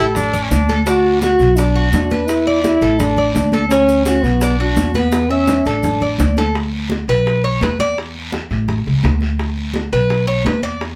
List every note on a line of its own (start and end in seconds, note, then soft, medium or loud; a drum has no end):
0.00 0.48 A1 medium
0.00 0.34 G4 loud
0.00 0.33 A4 medium
0.15 0.44 D4 medium
0.15 high bongo medium
0.15 high conga soft
0.15 low conga medium
0.15 long guiro medium
0.15 maracas medium
0.33 0.68 D5 medium
0.33 high conga soft
0.33 low conga medium
0.33 maracas medium
0.42 0.52 C#4 medium
0.50 1.34 D2 medium
0.50 0.78 D4 medium
0.50 high bongo soft
0.50 low bongo medium
0.50 high conga medium
0.50 short guiro medium
0.50 maracas medium
0.69 0.87 A4 medium
0.69 high bongo soft
0.69 high conga medium
0.69 short guiro medium
0.69 maracas soft
0.86 1.21 D4 medium
0.86 1.20 F#4 loud
0.86 high bongo medium
0.86 long guiro medium
0.86 maracas medium
1.04 high bongo soft
1.04 high conga soft
1.21 1.59 F#4 loud
1.21 1.57 F#4 medium
1.21 high bongo medium
1.21 high conga medium
1.21 short guiro medium
1.21 maracas medium
1.39 1.89 B1 medium
1.39 high bongo soft
1.39 high conga soft
1.39 short guiro medium
1.39 maracas soft
1.57 1.93 D4 medium
1.57 1.75 D4 medium
1.57 high bongo medium
1.57 high conga soft
1.57 long guiro medium
1.57 maracas medium
1.75 2.10 F#4 medium
1.75 high conga soft
1.92 2.76 E2 medium
1.92 2.29 D4 medium
1.92 high bongo soft
1.92 low bongo medium
1.92 high conga medium
1.92 short guiro medium
1.92 maracas medium
2.10 2.46 B4 medium
2.10 high bongo soft
2.10 high conga medium
2.10 short guiro medium
2.10 maracas soft
2.27 2.63 E4 loud
2.27 high bongo medium
2.27 long guiro medium
2.27 maracas medium
2.47 2.81 D5 medium
2.47 high bongo soft
2.47 high conga soft
2.63 3.01 E4 loud
2.63 high bongo medium
2.63 high conga medium
2.63 short guiro medium
2.63 maracas medium
2.81 3.32 A1 medium
2.81 3.17 A4 medium
2.81 high bongo soft
2.81 short guiro medium
2.81 maracas soft
2.99 3.34 D4 loud
2.99 high bongo medium
2.99 high conga soft
2.99 low conga medium
2.99 long guiro medium
2.99 maracas medium
3.17 3.52 D5 medium
3.17 high conga soft
3.17 low conga medium
3.35 4.18 D2 medium
3.35 3.68 D4 medium
3.35 high bongo soft
3.35 low bongo medium
3.35 high conga medium
3.35 short guiro medium
3.35 maracas medium
3.52 3.71 A4 medium
3.52 high bongo soft
3.52 high conga medium
3.52 short guiro medium
3.52 maracas soft
3.69 4.03 C#4 loud
3.69 4.06 C#4 medium
3.69 high bongo medium
3.69 high conga soft
3.69 long guiro medium
3.69 maracas medium
3.88 high bongo soft
3.88 high conga soft
3.88 maracas medium
4.06 4.25 C#4 medium
4.06 4.41 F#4 medium
4.06 high bongo medium
4.06 high conga medium
4.06 short guiro medium
4.06 maracas medium
4.23 4.73 B1 medium
4.23 4.58 B3 medium
4.23 high bongo soft
4.23 high conga soft
4.23 short guiro medium
4.23 maracas soft
4.41 4.60 D4 medium
4.41 high bongo medium
4.41 high conga soft
4.41 long guiro medium
4.41 maracas medium
4.59 4.92 D4 medium
4.59 4.94 F#4 medium
4.59 high conga soft
4.76 5.60 E2 medium
4.76 high bongo soft
4.76 low bongo medium
4.76 high conga medium
4.76 short guiro medium
4.76 maracas medium
4.94 5.31 B3 medium
4.94 5.30 B4 medium
4.94 high bongo soft
4.94 high conga medium
4.94 short guiro medium
4.94 maracas soft
5.12 high bongo loud
5.12 high conga soft
5.12 long guiro medium
5.12 maracas medium
5.30 5.67 C#4 loud
5.30 5.65 E5 medium
5.30 high conga soft
5.47 low bongo medium
5.47 high conga medium
5.47 short guiro medium
5.47 maracas medium
5.65 6.16 A1 medium
5.65 6.37 D4 medium
5.65 6.01 A4 medium
5.65 short guiro medium
5.65 maracas soft
5.83 low bongo medium
5.83 high conga soft
5.83 low conga medium
5.83 long guiro medium
5.83 maracas medium
6.01 6.36 D5 medium
6.01 high conga soft
6.01 low conga medium
6.18 7.02 D2 medium
6.18 low bongo loud
6.18 high conga medium
6.18 short guiro medium
6.18 maracas medium
6.37 6.55 A4 medium
6.37 low bongo medium
6.37 high conga medium
6.37 short guiro medium
6.37 maracas soft
6.55 high bongo medium
6.55 high conga soft
6.55 long guiro medium
6.72 high conga soft
6.90 high bongo medium
6.90 high conga medium
6.90 short guiro medium
7.08 7.58 B1 medium
7.08 7.42 B4 medium
7.08 short guiro medium
7.26 high bongo medium
7.26 high conga soft
7.26 long guiro medium
7.44 7.61 C#5 medium
7.44 high conga soft
7.61 8.45 E2 medium
7.61 7.79 B4 medium
7.61 high bongo medium
7.61 low bongo medium
7.61 high conga medium
7.61 short guiro medium
7.79 7.97 D5 loud
7.79 high conga medium
7.79 short guiro medium
7.97 high bongo medium
7.97 high conga soft
7.97 long guiro medium
8.15 high conga soft
8.32 high bongo medium
8.32 high conga loud
8.32 short guiro medium
8.50 8.84 A1 medium
8.50 high bongo soft
8.50 high conga soft
8.50 short guiro medium
8.68 high bongo medium
8.68 high conga soft
8.68 low conga medium
8.68 long guiro medium
8.86 9.03 C#2 medium
8.86 high bongo soft
8.86 high conga soft
9.03 9.87 D2 medium
9.03 high bongo medium
9.03 low bongo medium
9.03 high conga medium
9.03 short guiro medium
9.21 high bongo soft
9.21 high conga medium
9.21 short guiro medium
9.39 high bongo medium
9.39 high conga soft
9.39 long guiro medium
9.57 high conga soft
9.74 high bongo medium
9.74 high conga medium
9.74 short guiro medium
9.92 10.42 B1 medium
9.92 10.26 B4 medium
9.92 high conga soft
9.92 short guiro medium
10.10 high bongo medium
10.10 high conga soft
10.10 long guiro medium
10.27 10.45 C#5 loud
10.27 high conga soft
10.45 10.95 E2 medium
10.45 10.63 B4 medium
10.45 high bongo medium
10.45 low bongo medium
10.45 high conga medium
10.45 short guiro medium
10.62 10.81 D5 medium
10.62 high conga medium
10.62 short guiro medium
10.81 high bongo medium
10.81 high conga soft
10.81 long guiro medium